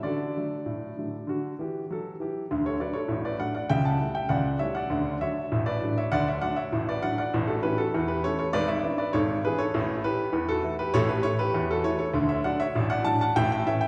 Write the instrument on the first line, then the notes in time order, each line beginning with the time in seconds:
grand piano
0.03 D3 D4 F#4 A4 D5
0.37 D3 F#3 A3
0.66 A2
0.97 D3 F#3 A3
1.27 D3 F#4
1.59 E3 G4
1.90 F#3 A4
2.20 E3 G4
2.51 D2 D3
2.66 A4 C#5
2.80 F#3 A3 D4 B4 D5
2.93 A4 C#5
3.08 A1 A2
3.25 B4 D5
3.39 F#3 A3 D4 D5 F#5
3.55 D5 F#5
3.70 C#2 C#3 E5 G5
3.85 F#5 A5
3.99 G3 A3 E4
4.15 E5 G5
4.29 C#2 C#3 D5 F#5
4.59 G3 A3 E4 C#5 E5
4.75 D5 F#5
4.90 D2 D3
5.21 F#3 A3 D4 C#5 E5
5.52 A1 A2
5.66 B4 D5
5.82 F#3 A3 D4
5.98 C#5 E5
6.12 D2 D3 D5 F#5
6.28 C#5 E5
6.42 F#3 A3 D4 D5 F#5
6.56 C#5 E5
6.72 A1 A2
6.89 B4 D5
7.03 F#3 A3 D4 D5 F#5
7.18 D5 F#5
7.34 A1 A2
7.47 F#4 A4
7.63 E3 A3 C#4 G4 B4
7.78 F#4 A4
7.94 E2 E3
8.08 G4 B4
8.24 E3 A3 C#4 A4 C#5
8.39 A4 C#5
8.53 G#1 G#2 B4 D5
8.68 C#5 E5
8.84 E3 B3 D4
8.98 B4 D5
9.13 G#1 G#2 A4 C#5
9.45 E3 B3 D4 G#4 B4
9.59 A4 C#5
9.74 A1 A2
10.04 E3 A3 E4 G4 B4
10.33 E2 E3
10.49 F#4 A4
10.63 E3 A3 E4
10.79 G4 B4
10.94 A1 A2 A4 C#5
11.09 G4 B4
11.23 E3 A3 E4 A4 C#5
11.39 G4 B4
11.54 E2 E3
11.71 F#4 A4
11.84 E3 A3 E4 A4 C#5
11.99 A4 C#5
12.14 D2 D3
12.29 C#5 E5
12.44 F#3 A3 D4 D5 F#5
12.60 C#5 E5
12.75 A1 A2
12.90 D5 F#5
13.05 F#3 A3 D4 F#5 A5
13.21 F#5 A5
13.36 A1 A2 E5 G5
13.52 E5 G5
13.67 E3 A3 C#4 C#5 E5
13.81 E5 G5